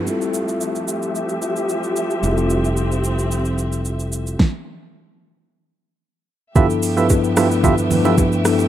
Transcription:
0.00 2.19 A3 medium
0.00 downlifter medium
0.05 4.36 F3 medium
0.05 2.18 G3 medium
0.05 2.19 C4 medium
0.05 2.20 E4 medium
0.05 2.20 F4 medium
0.05 4.36 G4 medium
0.05 4.36 E5 medium
0.05 shaker medium
0.10 2.21 A4 medium
0.21 shaker soft
0.34 shaker medium
0.48 shaker soft
0.61 shaker medium
0.75 shaker medium
0.88 shaker medium
1.03 shaker medium
1.15 shaker medium
1.29 shaker medium
1.42 shaker medium
1.56 shaker medium
1.69 shaker medium
1.83 shaker soft
1.96 shaker medium
2.11 shaker medium
2.22 4.36 F1 medium
2.22 4.35 G3 medium
2.22 4.35 C4 medium
2.22 4.38 C4 medium
2.22 4.36 E4 medium
2.22 4.37 F4 medium
2.22 shaker medium
2.26 2.32 G#4 medium
2.33 4.40 A4 medium
2.38 shaker soft
2.50 shaker medium
2.64 shaker soft
2.77 shaker medium
2.92 shaker soft
3.04 shaker medium
3.19 shaker medium
3.31 shaker medium
3.45 shaker medium
3.58 shaker medium
3.72 shaker medium
3.85 shaker medium
4.00 shaker soft
4.12 shaker medium
4.27 shaker medium
4.39 kick loud
4.39 snare medium
6.55 6.88 G2 medium
6.55 6.88 F3 medium
6.55 8.68 F3 medium
6.55 8.68 A3 medium
6.55 8.68 B3 medium
6.55 6.89 B3 medium
6.55 6.89 D4 medium
6.55 6.89 E4 medium
6.55 6.67 F4 loud
6.55 6.67 G4 medium
6.55 8.68 G4 medium
6.55 6.67 A4 medium
6.55 6.89 A4 medium
6.55 6.67 B4 medium
6.55 8.68 E5 medium
6.55 6.67 E5 loud
6.55 kick loud
6.55 low conga medium
6.55 shaker medium
6.70 shaker soft
6.83 open hi-hat medium
6.83 shaker medium
6.96 7.29 G2 medium
6.96 7.29 F3 medium
6.96 7.29 B3 medium
6.96 7.29 D4 medium
6.96 7.30 E4 medium
6.96 7.07 F4 medium
6.96 7.07 G4 medium
6.96 7.07 A4 medium
6.96 7.07 B4 medium
6.96 7.30 B4 medium
6.96 7.07 E5 medium
6.96 shaker medium
7.09 kick medium
7.09 high bongo medium
7.09 shaker medium
7.24 shaker medium
7.36 7.80 G2 medium
7.36 7.81 F3 medium
7.36 7.81 B3 medium
7.36 7.81 D4 medium
7.36 7.81 E4 medium
7.36 7.48 F4 medium
7.36 7.48 G4 medium
7.36 7.48 A4 medium
7.36 7.48 B4 medium
7.36 7.82 B4 medium
7.36 7.48 E5 medium
7.36 cross-stick medium
7.36 open hi-hat medium
7.36 low bongo medium
7.36 shaker medium
7.51 shaker medium
7.64 7.75 F4 loud
7.64 7.75 G4 medium
7.64 7.75 A4 medium
7.64 7.75 B4 medium
7.64 7.75 E5 loud
7.64 kick loud
7.64 low conga medium
7.64 shaker medium
7.78 shaker medium
7.91 8.34 G2 medium
7.91 8.35 F3 medium
7.91 8.35 B3 medium
7.91 8.35 D4 medium
7.91 8.35 E4 medium
7.91 8.36 B4 loud
7.91 open hi-hat soft
7.91 low conga medium
7.91 shaker medium
8.05 8.15 F4 medium
8.05 8.15 G4 medium
8.05 8.15 A4 medium
8.05 8.15 B4 medium
8.05 8.15 E5 medium
8.05 low bongo medium
8.05 shaker medium
8.18 kick medium
8.18 high bongo medium
8.18 shaker medium
8.32 shaker soft
8.45 8.67 G2 medium
8.45 8.67 F3 medium
8.45 8.67 B3 medium
8.45 8.67 D4 medium
8.45 8.68 E4 medium
8.45 8.68 A4 medium
8.45 cross-stick medium
8.45 open hi-hat medium
8.45 shaker medium
8.59 high bongo soft
8.59 shaker medium

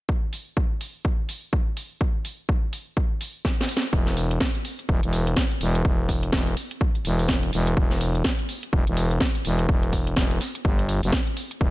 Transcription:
0.09 kick loud
0.33 open hi-hat medium
0.57 kick loud
0.81 open hi-hat medium
1.05 kick loud
1.29 open hi-hat loud
1.53 kick loud
1.77 open hi-hat loud
2.01 kick loud
2.25 open hi-hat loud
2.49 kick loud
2.73 open hi-hat loud
2.97 kick loud
3.21 open hi-hat loud
3.45 kick loud
3.45 snare medium
3.61 snare medium
3.69 open hi-hat loud
3.77 snare medium
3.93 4.39 E1 medium
3.93 kick loud
4.07 snare soft
4.17 open hi-hat medium
4.31 closed hi-hat medium
4.40 kick loud
4.40 snare loud
4.55 closed hi-hat soft
4.65 open hi-hat loud
4.79 closed hi-hat medium
4.89 5.01 E1 loud
4.89 kick loud
5.03 5.35 E1 medium
5.03 closed hi-hat medium
5.13 open hi-hat loud
5.27 closed hi-hat medium
5.37 kick loud
5.37 snare loud
5.51 closed hi-hat medium
5.61 5.83 E1 loud
5.61 open hi-hat loud
5.75 closed hi-hat medium
5.85 6.31 E1 medium
5.85 kick loud
6.09 kick medium
6.09 open hi-hat loud
6.23 closed hi-hat medium
6.32 6.55 E1 medium
6.32 kick loud
6.32 snare loud
6.47 closed hi-hat soft
6.57 open hi-hat loud
6.71 closed hi-hat medium
6.81 kick loud
6.95 closed hi-hat medium
7.05 7.51 E1 medium
7.05 open hi-hat loud
7.19 open hi-hat medium
7.29 kick loud
7.29 snare loud
7.43 closed hi-hat medium
7.53 7.75 E1 loud
7.53 open hi-hat loud
7.67 closed hi-hat medium
7.77 8.23 E1 loud
7.77 kick loud
7.91 snare soft
8.01 open hi-hat loud
8.15 closed hi-hat medium
8.24 kick loud
8.24 snare loud
8.39 closed hi-hat soft
8.49 open hi-hat loud
8.63 closed hi-hat medium
8.73 8.85 E1 loud
8.73 kick loud
8.87 9.19 E1 loud
8.87 closed hi-hat medium
8.97 open hi-hat loud
9.11 closed hi-hat medium
9.20 kick loud
9.20 snare loud
9.35 closed hi-hat medium
9.45 9.67 E1 medium
9.45 open hi-hat loud
9.59 closed hi-hat medium
9.69 10.15 E1 medium
9.69 kick loud
9.83 closed hi-hat soft
9.93 kick medium
9.93 open hi-hat loud
10.07 closed hi-hat medium
10.16 10.39 E1 loud
10.16 kick loud
10.16 snare loud
10.31 closed hi-hat soft
10.40 snare soft
10.40 open hi-hat loud
10.55 closed hi-hat medium
10.65 11.01 G1 loud
10.65 kick loud
10.79 closed hi-hat soft
10.89 open hi-hat loud
11.03 11.11 F#1 medium
11.03 open hi-hat medium
11.12 kick loud
11.12 snare loud
11.27 closed hi-hat medium
11.37 open hi-hat loud
11.51 closed hi-hat medium
11.61 11.70 E1 medium
11.61 kick loud

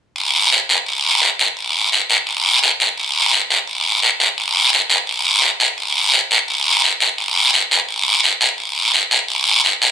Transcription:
0.16 long guiro medium
0.52 short guiro medium
0.69 short guiro medium
0.86 long guiro medium
1.22 short guiro medium
1.39 short guiro medium
1.57 long guiro medium
1.92 short guiro medium
2.10 short guiro medium
2.27 long guiro medium
2.63 short guiro medium
2.80 short guiro medium
2.97 long guiro medium
3.32 short guiro medium
3.50 short guiro medium
3.67 long guiro medium
4.02 short guiro medium
4.20 short guiro medium
4.38 long guiro medium
4.73 short guiro medium
4.90 short guiro medium
5.07 long guiro medium
5.42 short guiro medium
5.60 short guiro medium
5.78 long guiro medium
6.13 short guiro medium
6.31 short guiro medium
6.48 long guiro medium
6.83 short guiro medium
7.00 short guiro medium
7.18 long guiro medium
7.53 short guiro medium
7.71 short guiro medium
7.89 long guiro medium
8.23 short guiro medium
8.41 short guiro medium
8.58 long guiro medium
8.94 short guiro medium
9.11 short guiro medium
9.28 long guiro medium
9.64 short guiro medium
9.82 short guiro medium

